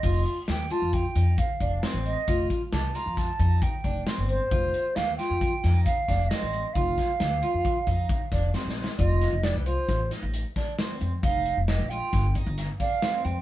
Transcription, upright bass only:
\new Staff \with { instrumentName = "Upright bass" } { \clef bass \time 5/4 \key f \mixolydian \tempo 4 = 134 f,,8 r8 ees,8 r16 f,8 r16 f,8 r8 f,,8 r16 a,,8 r16 | f,,8 r8 c,8 r16 f,8 r16 f,8 r8 f,,8 r16 g,,8 r16 | f,,8 r8 ees,8 r16 f,8 r16 f,8 r8 f,,8 r16 a,,8 r16 | f,,8 r8 d,8 r16 f,8 r16 f,8 r8 f,,8 r16 bes,,8 r16 |
f,,8. f,,8 c,8 r16 a,,8 r16 a,,8 r4 r16 f,8 | f,,8. f,,8 bes,,8 r16 g,,8 r16 g,,8 r4 r16 f,8 | }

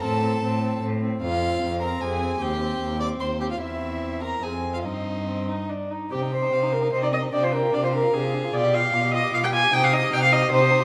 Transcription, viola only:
\new Staff \with { instrumentName = "Viola" } { \time 3/4 \key a \phrygian \tempo 4 = 150 c'8 c'8 c'8 c'8 c'8 c'8 | \key c \minor r8 c'4 c'4 c'8 | c'8 c'4 c'4 c'8 | c'2 c'4 |
c'4 c'8 ees'8 d'8 ees'8 | g'8 c''4 bes'8 c''16 d''16 ees''8 | d''16 c''16 bes'8 d''16 c''16 bes'8 aes'4 | d''8 f''4 ees''8 f''16 g''16 aes''8 |
g''16 f''16 ees''8 g''16 f''16 ees''8 c''4 | }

